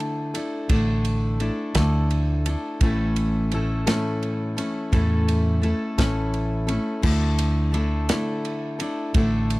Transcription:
Already playing: steel-string acoustic guitar D3 A3 D4 E4 A4
0.00 ride
0.34 steel-string acoustic guitar D4 E4 A4, ride
0.69 fingered electric bass A1, steel-string acoustic guitar D3 A3 D4 E4 A4, kick, ride
1.05 ride
1.40 steel-string acoustic guitar A3 D4 E4 A4, ride
1.75 fingered electric bass D2, steel-string acoustic guitar D3 A3 D4 E4 A4, kick, snare, ride
2.10 ride
2.46 steel-string acoustic guitar D4 E4 A4, ride
2.81 fingered electric bass A1, steel-string acoustic guitar A2 E3 A3 C#4 E4 A4, kick, ride
3.16 ride
3.51 steel-string acoustic guitar A3 C#4 E4 A4, ride
3.87 steel-string acoustic guitar A2 E3 A3 C#4 E4 A4, snare, ride
4.22 ride
4.57 steel-string acoustic guitar A3 C#4 E4 A4, ride
4.92 fingered electric bass E2, steel-string acoustic guitar A2 E3 A3 C#4 E4 A4, kick, ride
5.28 ride
5.62 steel-string acoustic guitar A3 C#4 E4 A4, ride
5.98 fingered electric bass A1, steel-string acoustic guitar A2 E3 A3 C#4 E4 A4, kick, snare, ride
6.34 ride
6.67 steel-string acoustic guitar A3 C#4 E4 A4, ride
7.02 fingered electric bass D2, steel-string acoustic guitar D3 A3 D4 E4 A4, kick, crash
7.38 ride
7.72 steel-string acoustic guitar A3 D4 E4 A4, ride
8.09 steel-string acoustic guitar D3 A3 D4 E4 A4, snare, ride
8.45 ride
8.79 steel-string acoustic guitar D4 E4 A4, ride
9.14 fingered electric bass A1, steel-string acoustic guitar D3 A3 D4 E4 A4, kick, ride
9.50 ride

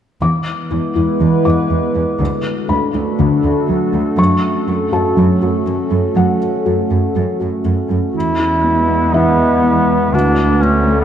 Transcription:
0.21 cello section E2, synth pluck E3, analog synth pad G#3 B3 E4 B4, felt piano D6
0.71 cello section E2, synth pluck E4
0.96 cello section E2, synth pluck E4
1.21 cello section E2, synth pluck E3
1.45 cello section E2, synth pluck E4, felt piano D6
1.70 cello section E2, synth pluck G#3
1.95 cello section E2, synth pluck B3
2.20 cello section D2, synth pluck D3, analog synth pad A3 D4 F#4 A4
2.69 cello section D2, synth pluck D4, felt piano B5
2.94 cello section D2, synth pluck D4
3.19 cello section D2, synth pluck D3
3.44 cello section D2, synth pluck D4
3.69 cello section D2, synth pluck F#3
3.93 cello section D2, synth pluck A3
4.18 cello section F#2, synth pluck F#3, analog synth pad C#4, felt piano C#6
4.68 cello section F#2, synth pluck F#4
4.92 cello section F#2, synth pluck F#4, felt piano A4 A5
5.17 cello section F#2, synth pluck F#3
5.42 cello section F#2, synth pluck F#4
5.67 cello section F#2, synth pluck A3
5.91 cello section F#2, synth pluck C#4
6.16 cello section F#2, synth pluck F#3, felt piano F#5
6.66 cello section F#2, synth pluck F#4
6.91 cello section F#2, synth pluck F#4
7.15 cello section F#2, synth pluck F#3
7.40 cello section F#2, synth pluck F#4
7.64 cello section F#2, synth pluck A3
7.90 cello section F#2, synth pluck C#4
8.14 cello section E2, synth pluck E3, analog synth pad G#3 B3 E4 B4, duduk E4
8.39 synth pluck E4
8.64 synth pluck B3
8.89 synth pluck B3
9.13 synth pluck E3, duduk B3, felt piano E4 E5
9.38 synth pluck B3
9.63 synth pluck B3
10.13 cello section D2, synth pluck D3, analog synth pad D3 A3 F#4 A4, duduk D4, felt piano F#4 F#5
10.38 synth pluck D4
10.63 synth pluck A3, duduk C#4
10.87 synth pluck A3
11.00 duduk B3

